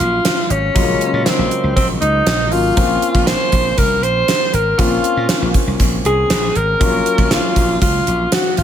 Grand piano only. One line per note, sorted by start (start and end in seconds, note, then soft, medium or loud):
0.00 0.71 F#3 medium
0.00 0.72 A#3 medium
0.00 0.72 C#4 medium
0.00 0.72 F4 medium
0.75 2.49 C#3 medium
0.75 2.48 F#3 medium
0.75 0.81 G#3 soft
0.75 2.49 F4 medium
0.81 2.50 A#3 medium
2.51 2.77 F#3 soft
2.51 2.75 A#3 soft
2.51 2.76 C#4 soft
2.51 2.77 F4 medium
2.76 4.74 A#3 medium
2.76 4.75 C4 medium
2.76 4.75 C#4 medium
2.76 4.76 F4 medium
4.78 6.76 A#3 medium
4.78 6.76 C4 medium
4.78 6.77 C#4 medium
4.78 6.77 F4 medium
6.80 8.63 F#3 medium
6.80 8.63 A#3 medium
6.80 8.63 C#4 medium
6.80 8.63 F4 medium